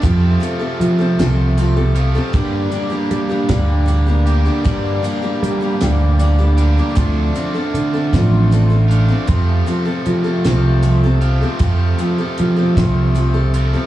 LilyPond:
<<
  \new Staff \with { instrumentName = "Steel-string acoustic guitar" } { \time 6/8 \key g \minor \tempo 4. = 52 <f c' g' a'>8 <f c' g' a'>16 <c' g' a'>8 <c' g' a'>16 <f c' g' a'>8 <f c' g' a'>16 <c' g' a'>8 <c' g' a'>16 | <g, d g bes d' g'>8 <g bes d' g'>16 <g bes d' g'>8 <g bes d' g'>16 <g, d g bes d' g'>8 <g bes d' g'>16 <g bes d' g'>8 <g bes d' g'>16 | <g, d g bes d' g'>8 <g bes d' g'>16 <g bes d' g'>8 <g bes d' g'>16 <g, d g bes d' g'>8 <g bes d' g'>16 <g bes d' g'>8 <g bes d' g'>16 | <d f c' d' a'>8 <f c' d' a'>16 <c' d' a'>8 <c' d' a'>16 <d f c' d' a'>8 <f c' d' a'>16 <c' d' a'>8 <c' d' a'>16 |
<f c' g' a'>8 <f c' g' a'>16 <c' g' a'>8 <c' g' a'>16 <f c' g' a'>8 <f c' g' a'>16 <c' g' a'>8 <c' g' a'>16 | <f c' g' a'>8 <f c' g' a'>16 <c' g' a'>8 <c' g' a'>16 <f c' g' a'>8 <f c' g' a'>16 <c' g' a'>8 <c' g' a'>16 | }
  \new Staff \with { instrumentName = "Overdriven electric guitar" } { \time 6/8 \key g \minor <f, c f a c' f'>2~ <f, c f a c' f'>8 <f, c f a c' f'>8 | <g, d g bes d' g'>2~ <g, d g bes d' g'>8 <g, d g bes d' g'>8 | <g, d g bes d' g'>2~ <g, d g bes d' g'>8 <g, d g bes d' g'>8 | <d a d' f'>2~ <d a d' f'>8 <d a d' f'>8 |
<f, c f a c' f'>2~ <f, c f a c' f'>8 <f, c f a c' f'>8 | <f, c f a c' f'>2~ <f, c f a c' f'>8 <f, c f a c' f'>8 | }
  \new Staff \with { instrumentName = "Picked electric bass" } { \clef bass \time 6/8 \key g \minor f,8 r8 f8 c,4. | g,8 r8 g8 d,4. | g,8 r8 g8 d,4. | d,8 r8 d8 a,,4. |
f,8 r8 f8 c,4. | f,8 r8 f8 c,4. | }
  \new DrumStaff \with { instrumentName = "Drums" } \drummode { \time 6/8 <hh bd>8 hh8 hh8 <hh sn>8 hh8 hh8 | <hh bd>8 hh8 hh8 <hh bd sn>8 hh8 hh8 | <hh bd>8 hh8 hh8 <hh sn>8 hh8 hh8 | <hh bd>8 hh8 hh8 <hh bd sn>8 hh8 hh8 |
<hh bd>8 hh8 hh8 <hh sn>8 hh8 hh8 | <hh bd>8 hh8 hh8 <hh bd sn>8 hh8 hh8 | }
>>